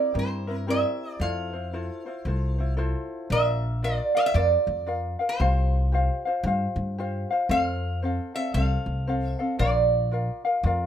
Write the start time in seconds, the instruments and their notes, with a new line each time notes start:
Already playing: ukulele C4 E4 A#4, resonator guitar played with a steel bar D5
0.14 upright bass G2, ukulele C4 E4 G4 A#4
0.19 resonator guitar played with a steel bar C5
0.47 ukulele C4 E4 A#4
0.56 resonator guitar played with a steel bar A#4
0.67 ukulele C4 E4 G4 A#4, resonator guitar played with a steel bar E5
1.20 upright bass F2, ukulele E4 F4 A4 C5, resonator guitar played with a steel bar F5
1.53 ukulele E4 F4 C5
1.73 ukulele E4 F4 A4 C5
2.06 ukulele E4 F4 C5
2.25 upright bass C2, ukulele E4 F4 A4 C5
2.58 ukulele E4 F4 C5
2.77 ukulele E4 F4 A4 C5
3.30 upright bass A#1, ukulele F4 A#4 D5, resonator guitar played with a steel bar E5
3.83 ukulele F4 A#4 D5 F5, resonator guitar played with a steel bar D5
4.15 ukulele F4 A#4 F5, resonator guitar played with a steel bar F5
4.26 resonator guitar played with a steel bar E5
4.34 upright bass F2, ukulele F4 A#4 D5 F5, resonator guitar played with a steel bar D5
4.67 upright bass F2
4.87 ukulele F4 A#4 D5 F5
5.19 ukulele F4 A#4 F5
5.29 resonator guitar played with a steel bar C5
5.40 upright bass C2, ukulele F4 G4 C5 F5
5.92 ukulele F4 G4 C5 F5
6.25 ukulele F4 C5 F5
6.43 upright bass G2, ukulele F4 G4 C5 F5
6.76 upright bass G2
6.98 ukulele F4 G4 C5 F5
7.31 ukulele F4 C5 F5
7.49 upright bass F2, ukulele C4 A4 C5 F5, resonator guitar played with a steel bar F5
8.02 ukulele C4 A4 C5 F5
8.34 ukulele C4 A4 F5, resonator guitar played with a steel bar E5
8.54 upright bass C2, ukulele C4 A4 C5 F5, resonator guitar played with a steel bar F5
8.86 upright bass C2
9.07 ukulele C4 A4 C5 F5
9.26 resonator guitar played with a steel bar E5
9.39 ukulele C4 A4 F5
9.59 upright bass A#1, ukulele F4 A#4 D5 F5, resonator guitar played with a steel bar D5
10.11 ukulele F4 A#4 D5 F5
10.45 ukulele F4 A#4 F5
10.63 upright bass F2, ukulele F4 A#4 D5 F5